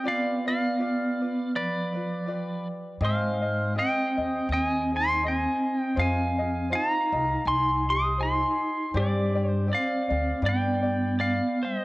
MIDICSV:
0, 0, Header, 1, 5, 480
1, 0, Start_track
1, 0, Tempo, 740741
1, 37, Time_signature, 4, 2, 24, 8
1, 7676, End_track
2, 0, Start_track
2, 0, Title_t, "Pedal steel guitar"
2, 0, Program_c, 0, 26
2, 51, Note_on_c, 0, 74, 69
2, 52, Note_on_c, 0, 77, 82
2, 298, Note_off_c, 0, 74, 0
2, 302, Note_off_c, 0, 77, 0
2, 310, Note_on_c, 0, 77, 100
2, 318, Note_on_c, 0, 74, 69
2, 974, Note_off_c, 0, 74, 0
2, 1008, Note_off_c, 0, 77, 0
2, 1011, Note_on_c, 0, 74, 75
2, 1016, Note_on_c, 0, 71, 55
2, 1728, Note_off_c, 0, 74, 0
2, 1730, Note_off_c, 0, 71, 0
2, 1974, Note_on_c, 0, 72, 63
2, 1980, Note_on_c, 0, 77, 75
2, 2417, Note_off_c, 0, 72, 0
2, 2451, Note_off_c, 0, 77, 0
2, 2453, Note_on_c, 0, 75, 68
2, 2457, Note_on_c, 0, 79, 79
2, 2897, Note_off_c, 0, 75, 0
2, 2931, Note_on_c, 0, 75, 76
2, 2936, Note_off_c, 0, 79, 0
2, 2938, Note_on_c, 0, 79, 93
2, 3010, Note_off_c, 0, 79, 0
2, 3010, Note_on_c, 0, 80, 93
2, 3175, Note_off_c, 0, 75, 0
2, 3205, Note_off_c, 0, 80, 0
2, 3214, Note_on_c, 0, 80, 68
2, 3218, Note_on_c, 0, 84, 89
2, 3393, Note_off_c, 0, 80, 0
2, 3412, Note_on_c, 0, 75, 69
2, 3415, Note_off_c, 0, 84, 0
2, 3422, Note_on_c, 0, 80, 100
2, 3753, Note_off_c, 0, 80, 0
2, 3753, Note_on_c, 0, 79, 100
2, 3856, Note_off_c, 0, 75, 0
2, 3884, Note_on_c, 0, 77, 74
2, 3889, Note_off_c, 0, 79, 0
2, 3897, Note_on_c, 0, 80, 94
2, 4332, Note_off_c, 0, 77, 0
2, 4360, Note_on_c, 0, 77, 75
2, 4374, Note_off_c, 0, 80, 0
2, 4376, Note_on_c, 0, 82, 98
2, 4810, Note_off_c, 0, 77, 0
2, 4843, Note_on_c, 0, 80, 73
2, 4844, Note_off_c, 0, 82, 0
2, 4847, Note_on_c, 0, 84, 106
2, 5091, Note_off_c, 0, 80, 0
2, 5112, Note_off_c, 0, 84, 0
2, 5120, Note_on_c, 0, 84, 85
2, 5133, Note_on_c, 0, 87, 103
2, 5306, Note_off_c, 0, 84, 0
2, 5318, Note_on_c, 0, 80, 84
2, 5331, Note_on_c, 0, 84, 107
2, 5332, Note_off_c, 0, 87, 0
2, 5769, Note_off_c, 0, 80, 0
2, 5814, Note_on_c, 0, 67, 74
2, 5816, Note_off_c, 0, 84, 0
2, 5831, Note_on_c, 0, 74, 78
2, 6155, Note_off_c, 0, 74, 0
2, 6155, Note_on_c, 0, 72, 78
2, 6258, Note_off_c, 0, 67, 0
2, 6266, Note_off_c, 0, 72, 0
2, 6304, Note_on_c, 0, 74, 69
2, 6315, Note_on_c, 0, 77, 97
2, 6743, Note_off_c, 0, 74, 0
2, 6780, Note_on_c, 0, 74, 75
2, 6788, Note_off_c, 0, 77, 0
2, 6797, Note_on_c, 0, 79, 95
2, 7222, Note_off_c, 0, 74, 0
2, 7257, Note_on_c, 0, 74, 72
2, 7261, Note_off_c, 0, 79, 0
2, 7263, Note_on_c, 0, 77, 90
2, 7500, Note_off_c, 0, 74, 0
2, 7529, Note_off_c, 0, 77, 0
2, 7534, Note_on_c, 0, 72, 63
2, 7547, Note_on_c, 0, 75, 79
2, 7676, Note_off_c, 0, 72, 0
2, 7676, Note_off_c, 0, 75, 0
2, 7676, End_track
3, 0, Start_track
3, 0, Title_t, "Ukulele"
3, 0, Program_c, 1, 24
3, 25, Note_on_c, 1, 67, 78
3, 34, Note_on_c, 1, 65, 85
3, 35, Note_on_c, 1, 74, 100
3, 37, Note_on_c, 1, 71, 94
3, 290, Note_off_c, 1, 74, 0
3, 295, Note_off_c, 1, 71, 0
3, 296, Note_off_c, 1, 67, 0
3, 298, Note_on_c, 1, 74, 56
3, 303, Note_on_c, 1, 71, 57
3, 304, Note_off_c, 1, 65, 0
3, 312, Note_on_c, 1, 65, 46
3, 504, Note_off_c, 1, 65, 0
3, 504, Note_off_c, 1, 74, 0
3, 506, Note_on_c, 1, 67, 57
3, 510, Note_off_c, 1, 71, 0
3, 511, Note_on_c, 1, 65, 64
3, 518, Note_on_c, 1, 71, 68
3, 524, Note_on_c, 1, 74, 78
3, 779, Note_off_c, 1, 71, 0
3, 779, Note_off_c, 1, 74, 0
3, 782, Note_off_c, 1, 67, 0
3, 785, Note_off_c, 1, 65, 0
3, 786, Note_on_c, 1, 74, 52
3, 787, Note_on_c, 1, 71, 44
3, 793, Note_on_c, 1, 65, 43
3, 1241, Note_off_c, 1, 74, 0
3, 1248, Note_on_c, 1, 74, 55
3, 1254, Note_off_c, 1, 71, 0
3, 1260, Note_off_c, 1, 65, 0
3, 1261, Note_on_c, 1, 71, 53
3, 1268, Note_on_c, 1, 65, 48
3, 1461, Note_off_c, 1, 74, 0
3, 1463, Note_off_c, 1, 65, 0
3, 1463, Note_on_c, 1, 67, 51
3, 1469, Note_off_c, 1, 71, 0
3, 1471, Note_on_c, 1, 65, 51
3, 1477, Note_on_c, 1, 71, 62
3, 1479, Note_on_c, 1, 74, 64
3, 1945, Note_off_c, 1, 67, 0
3, 1946, Note_off_c, 1, 65, 0
3, 1947, Note_on_c, 1, 67, 74
3, 1949, Note_on_c, 1, 60, 78
3, 1951, Note_off_c, 1, 71, 0
3, 1953, Note_off_c, 1, 74, 0
3, 1953, Note_on_c, 1, 68, 76
3, 1955, Note_on_c, 1, 75, 96
3, 2204, Note_off_c, 1, 75, 0
3, 2211, Note_off_c, 1, 68, 0
3, 2212, Note_on_c, 1, 75, 63
3, 2215, Note_off_c, 1, 60, 0
3, 2219, Note_on_c, 1, 68, 48
3, 2222, Note_off_c, 1, 67, 0
3, 2223, Note_on_c, 1, 60, 53
3, 2425, Note_off_c, 1, 60, 0
3, 2426, Note_off_c, 1, 68, 0
3, 2426, Note_off_c, 1, 75, 0
3, 2428, Note_on_c, 1, 67, 60
3, 2433, Note_on_c, 1, 60, 67
3, 2433, Note_on_c, 1, 68, 61
3, 2435, Note_on_c, 1, 75, 59
3, 2697, Note_off_c, 1, 75, 0
3, 2702, Note_off_c, 1, 67, 0
3, 2704, Note_off_c, 1, 60, 0
3, 2705, Note_off_c, 1, 68, 0
3, 2705, Note_on_c, 1, 75, 53
3, 2714, Note_on_c, 1, 68, 48
3, 2718, Note_on_c, 1, 60, 45
3, 3180, Note_off_c, 1, 75, 0
3, 3180, Note_on_c, 1, 75, 52
3, 3185, Note_off_c, 1, 68, 0
3, 3187, Note_on_c, 1, 68, 48
3, 3193, Note_off_c, 1, 60, 0
3, 3195, Note_on_c, 1, 60, 43
3, 3383, Note_off_c, 1, 60, 0
3, 3383, Note_off_c, 1, 68, 0
3, 3390, Note_off_c, 1, 75, 0
3, 3391, Note_on_c, 1, 60, 62
3, 3391, Note_on_c, 1, 68, 65
3, 3397, Note_on_c, 1, 75, 63
3, 3859, Note_off_c, 1, 75, 0
3, 3862, Note_on_c, 1, 72, 89
3, 3864, Note_off_c, 1, 60, 0
3, 3867, Note_on_c, 1, 65, 82
3, 3871, Note_off_c, 1, 68, 0
3, 3872, Note_on_c, 1, 75, 81
3, 3873, Note_on_c, 1, 68, 88
3, 4130, Note_off_c, 1, 75, 0
3, 4136, Note_off_c, 1, 68, 0
3, 4137, Note_on_c, 1, 75, 61
3, 4139, Note_off_c, 1, 72, 0
3, 4141, Note_off_c, 1, 65, 0
3, 4144, Note_on_c, 1, 68, 52
3, 4150, Note_on_c, 1, 65, 45
3, 4339, Note_off_c, 1, 65, 0
3, 4340, Note_on_c, 1, 72, 62
3, 4344, Note_off_c, 1, 75, 0
3, 4346, Note_off_c, 1, 68, 0
3, 4347, Note_on_c, 1, 65, 74
3, 4352, Note_on_c, 1, 75, 66
3, 4354, Note_on_c, 1, 68, 67
3, 4609, Note_off_c, 1, 75, 0
3, 4617, Note_off_c, 1, 68, 0
3, 4617, Note_on_c, 1, 75, 52
3, 4618, Note_off_c, 1, 65, 0
3, 4618, Note_off_c, 1, 72, 0
3, 4625, Note_on_c, 1, 68, 47
3, 4626, Note_on_c, 1, 65, 43
3, 5085, Note_off_c, 1, 75, 0
3, 5093, Note_on_c, 1, 75, 53
3, 5098, Note_off_c, 1, 65, 0
3, 5104, Note_off_c, 1, 68, 0
3, 5106, Note_on_c, 1, 65, 41
3, 5298, Note_off_c, 1, 75, 0
3, 5301, Note_off_c, 1, 65, 0
3, 5301, Note_on_c, 1, 72, 55
3, 5309, Note_on_c, 1, 65, 64
3, 5311, Note_on_c, 1, 68, 62
3, 5314, Note_on_c, 1, 75, 61
3, 5787, Note_off_c, 1, 72, 0
3, 5791, Note_off_c, 1, 65, 0
3, 5791, Note_off_c, 1, 68, 0
3, 5793, Note_on_c, 1, 72, 85
3, 5794, Note_off_c, 1, 75, 0
3, 5794, Note_on_c, 1, 60, 89
3, 5798, Note_on_c, 1, 67, 85
3, 5804, Note_on_c, 1, 74, 88
3, 6052, Note_off_c, 1, 74, 0
3, 6058, Note_off_c, 1, 67, 0
3, 6059, Note_off_c, 1, 60, 0
3, 6060, Note_on_c, 1, 74, 55
3, 6065, Note_off_c, 1, 72, 0
3, 6066, Note_on_c, 1, 60, 47
3, 6066, Note_on_c, 1, 67, 59
3, 6261, Note_off_c, 1, 60, 0
3, 6265, Note_off_c, 1, 67, 0
3, 6265, Note_on_c, 1, 72, 64
3, 6269, Note_on_c, 1, 60, 71
3, 6270, Note_off_c, 1, 74, 0
3, 6273, Note_on_c, 1, 67, 63
3, 6280, Note_on_c, 1, 74, 68
3, 6530, Note_off_c, 1, 74, 0
3, 6537, Note_on_c, 1, 74, 50
3, 6541, Note_off_c, 1, 60, 0
3, 6541, Note_off_c, 1, 67, 0
3, 6541, Note_off_c, 1, 72, 0
3, 6549, Note_on_c, 1, 60, 47
3, 6549, Note_on_c, 1, 67, 55
3, 6748, Note_off_c, 1, 67, 0
3, 6750, Note_off_c, 1, 74, 0
3, 6750, Note_on_c, 1, 71, 78
3, 6752, Note_off_c, 1, 60, 0
3, 6755, Note_on_c, 1, 62, 72
3, 6756, Note_on_c, 1, 67, 73
3, 6762, Note_on_c, 1, 74, 80
3, 7007, Note_off_c, 1, 74, 0
3, 7015, Note_on_c, 1, 74, 57
3, 7016, Note_off_c, 1, 67, 0
3, 7021, Note_off_c, 1, 71, 0
3, 7022, Note_off_c, 1, 62, 0
3, 7024, Note_on_c, 1, 67, 60
3, 7030, Note_on_c, 1, 62, 42
3, 7229, Note_off_c, 1, 74, 0
3, 7233, Note_off_c, 1, 67, 0
3, 7236, Note_off_c, 1, 62, 0
3, 7241, Note_on_c, 1, 67, 67
3, 7676, Note_off_c, 1, 67, 0
3, 7676, End_track
4, 0, Start_track
4, 0, Title_t, "Vibraphone"
4, 0, Program_c, 2, 11
4, 52, Note_on_c, 2, 59, 78
4, 297, Note_off_c, 2, 59, 0
4, 319, Note_on_c, 2, 59, 85
4, 974, Note_off_c, 2, 59, 0
4, 1000, Note_on_c, 2, 53, 64
4, 1722, Note_off_c, 2, 53, 0
4, 1970, Note_on_c, 2, 56, 70
4, 2415, Note_off_c, 2, 56, 0
4, 2449, Note_on_c, 2, 60, 67
4, 2894, Note_off_c, 2, 60, 0
4, 2937, Note_on_c, 2, 60, 77
4, 3179, Note_off_c, 2, 60, 0
4, 3210, Note_on_c, 2, 63, 66
4, 3391, Note_off_c, 2, 63, 0
4, 3417, Note_on_c, 2, 60, 76
4, 3858, Note_off_c, 2, 60, 0
4, 3898, Note_on_c, 2, 60, 84
4, 4339, Note_off_c, 2, 60, 0
4, 4368, Note_on_c, 2, 63, 86
4, 4814, Note_off_c, 2, 63, 0
4, 4856, Note_on_c, 2, 63, 88
4, 5098, Note_off_c, 2, 63, 0
4, 5114, Note_on_c, 2, 67, 77
4, 5303, Note_off_c, 2, 67, 0
4, 5337, Note_on_c, 2, 63, 82
4, 5779, Note_off_c, 2, 63, 0
4, 5814, Note_on_c, 2, 55, 72
4, 6258, Note_off_c, 2, 55, 0
4, 6309, Note_on_c, 2, 60, 71
4, 6746, Note_off_c, 2, 60, 0
4, 6791, Note_on_c, 2, 59, 90
4, 7227, Note_off_c, 2, 59, 0
4, 7272, Note_on_c, 2, 59, 77
4, 7508, Note_off_c, 2, 59, 0
4, 7544, Note_on_c, 2, 55, 61
4, 7676, Note_off_c, 2, 55, 0
4, 7676, End_track
5, 0, Start_track
5, 0, Title_t, "Upright bass"
5, 0, Program_c, 3, 32
5, 1949, Note_on_c, 3, 44, 98
5, 2438, Note_off_c, 3, 44, 0
5, 2706, Note_on_c, 3, 39, 75
5, 2840, Note_off_c, 3, 39, 0
5, 2909, Note_on_c, 3, 39, 94
5, 3534, Note_off_c, 3, 39, 0
5, 3869, Note_on_c, 3, 41, 98
5, 4359, Note_off_c, 3, 41, 0
5, 4616, Note_on_c, 3, 36, 86
5, 4754, Note_off_c, 3, 36, 0
5, 4830, Note_on_c, 3, 36, 87
5, 5455, Note_off_c, 3, 36, 0
5, 5794, Note_on_c, 3, 43, 97
5, 6283, Note_off_c, 3, 43, 0
5, 6548, Note_on_c, 3, 38, 88
5, 6683, Note_off_c, 3, 38, 0
5, 6753, Note_on_c, 3, 43, 92
5, 7378, Note_off_c, 3, 43, 0
5, 7676, End_track
0, 0, End_of_file